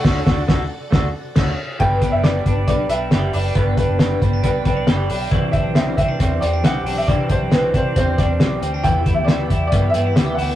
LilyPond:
<<
  \new Staff \with { instrumentName = "Upright piano" } { \time 4/4 \key g \major \tempo 4 = 136 fis''2. r4 | g''8. e''16 d''4 d''8 e''4 d''8 | b'8 b'4 r2 r8 | r8 e''8 e''8 e''4 d''8 fis''8. e''16 |
d''8 c''8 b'8 c''8 c''8 d''4 r8 | g''8. e''16 d''4 d''8 e''4 fis''8 | }
  \new Staff \with { instrumentName = "String machine" } { \time 4/4 \key g \major <fis' a' d'' a''>1 | r1 | r1 | r1 |
r1 | r1 | }
  \new Staff \with { instrumentName = "Clean electric guitar" } { \time 4/4 \key g \major r1 | b8 d'8 b8 d'8 b8 d'8 g'8 d'8 | b8 d'8 b8 c'16 d'16 b8 c'16 d'16 g'8 d'8 | e8 d'8 c'8 c'16 d'16 c'8 c'16 d'16 g'8 d'8 |
e8 d'8 c'8 d'8 c'8 d'8 g'8 c'16 d'16 | e8 e'8 b8 e'8 b8 d'16 e'16 g'8 e'8 | }
  \new Staff \with { instrumentName = "Clean electric guitar" } { \time 4/4 \key g \major <d a d' fis' a'>8 <d' fis' a'>8 <d a d' fis' a'>8 r8 <a d' fis' a'>8 r8 <d a d' fis' a'>8 r8 | <g, d g d' g' b'>8 <g d' g' b'>8 <g, d g d' g' b'>8 <g d' g' b'>8 <g d' g' b'>8 <g d' g' b'>8 <g, d g d' g' b'>8 <g d' g' b'>8 | <g, d g d' g' b'>8 <g d' g' b'>8 <g, d g d' g' b'>8 <g d' g' b'>8 <g d' g' b'>8 <g d' g' b'>8 <g, d g d' g' b'>8 <g d' g' b'>8 | <c e g c' d' g'>8 <g c' d' g'>8 <c e g c' d' g'>8 <g c' d' g'>8 <g c' d' g'>8 <g c' d' g'>8 <c e g c' d' g'>8 <g c' d' g'>8 |
<c e g c' d' g'>8 <g c' d' g'>8 <c e g c' d' g'>8 <g c' d' g'>8 <g c' d' g'>8 <g c' d' g'>8 <c e g c' d' g'>8 <g c' d' g'>8 | <e g b e' g'>8 <b e' g'>8 <e g b e' g'>8 <b e' g'>8 <g b e' g'>8 <b e' g'>8 <e g b e' g'>8 <b e' g'>8 | }
  \new Staff \with { instrumentName = "Fingered electric bass" } { \clef bass \time 4/4 \key g \major d,8 d,8 d,8 r8 d,8 r8 d,8 r8 | g,,8. fis,,8. g,,8 b,,8 b,,8 fis,,8 fis,,8 | g,,8. fis,,8. g,,8 b,,8 b,,8 fis,,8 b,,8 | c,8. b,,8. c,8 e,8 e,8 b,,8 b,,8 |
c,8. b,,8. c,8 e,8 e,8 b,,8 d,8 | e,8. d,8. e,8 g,8 g,8 d,8 d,8 | }
  \new DrumStaff \with { instrumentName = "Drums" } \drummode { \time 4/4 <cymc bd sn>8 <bd sn>8 <bd sn>4 <bd sn>4 <cymc bd sn>4 | <hh bd>8 <hh bd>8 <hh sn>8 <hh bd>8 <hh bd>8 hh8 <hh sn>8 hho8 | <hh bd>8 <hh bd>8 <hh sn>8 <hh bd>8 <hh bd>8 <hh bd>8 <hh sn>8 hho8 | <hh bd>8 <hh bd>8 <hh sn>8 <hh bd>8 <hh bd>8 hh8 <hh sn>8 hho8 |
<hh bd>8 <hh bd>8 <hh sn>8 <hh bd>8 <hh bd>8 <hh bd sn>8 <hh sn>8 hh8 | <hh bd>8 <hh bd>8 <hh sn>8 <hh bd>8 <hh bd>8 hh8 <hh sn>8 hho8 | }
>>